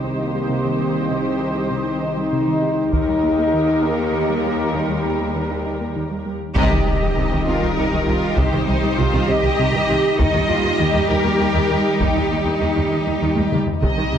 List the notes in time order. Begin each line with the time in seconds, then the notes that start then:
Already playing: C2 D#3 D#4 G4 C5 D#5
0.04 C4
0.19 A#3 C4
0.34 G3
0.49 C3
0.65 D#3
0.79 D#3
1.10 C3 C4
1.25 D#3
1.41 G3
1.56 G3
1.71 C3
1.86 C4
2.01 C4 D#4
2.17 G3
2.32 C3
2.47 D#3
2.62 D#3
2.91 D#2 D#3 D#4 G4 A#4 D#5, taiko
3.08 G3
3.23 A#3
3.39 A#3
3.54 D#3
3.69 D#4
3.83 A#3 D#4
3.99 A#3
4.14 D#3
4.30 G3
4.44 G3
4.75 D#3 G3
4.90 G3
5.05 A#3
5.21 A#3
5.36 D#3
5.51 D#4
5.66 D#4
5.81 A#3
5.96 D#3
6.11 G3
6.26 G3
6.56 C2 C3 D#3 G3 D#4 G4 D#5, taiko, impact
6.71 C2 D#3
6.86 C2 C3 G3
7.01 C2 D#3 G3
7.16 C2 C3
7.31 C2 D#3 C4
7.46 C2 C3 C4 F4 A#4
7.62 C2 D#3 G3
7.76 C2 C3 D#4
7.92 C2 D#3
8.07 C2 C3 D#3 F4
8.37 C2 C3 G4 C5, taiko
8.51 C2 D#3
8.67 C2 C3 G3 D#4
8.82 C2 D#3 G3
8.98 C2 C3 F4
9.13 C2 D#3 C4
9.27 C2 C3 C4 G4 D#5
9.43 C2 D#3 G3
9.58 C2 C3
9.73 C2 D#3
9.88 C2 C3 D#3
10.18 D#2 D#3 G3 D#4 G4 D#5, taiko
10.34 D#2 D#3 G3
10.48 D#2 D#3 A#3 F4
10.64 D#2 D#3 A#3
10.79 D#2 D#3 G4
10.94 D#2 D#3 D#4
11.09 D#2 D#3 D#4 A#4
11.24 D#2 D#3 A#3
11.40 D#2 D#3
11.55 D#2 D#3 G3
11.70 D#2 D#3 G3
12.00 D#2 D#3 D#4 G4, taiko
12.16 D#2 D#3 G3
12.30 D#2 D#3 A#3
12.46 D#2 D#3 A#3
12.61 D#2 D#3
12.75 D#2 D#3 D#4
12.91 D#2 D#3 D#4
13.06 D#2 D#3 A#3
13.21 D#2 D#3
13.36 D#2 D#3 G3, taiko high
13.52 D#2 D#3 G3, taiko mid
13.67 taiko low
13.82 C2 C3 D#3 G3 D#4 G4 D#5, taiko
13.97 C2 D#3
14.13 C2 C3 G3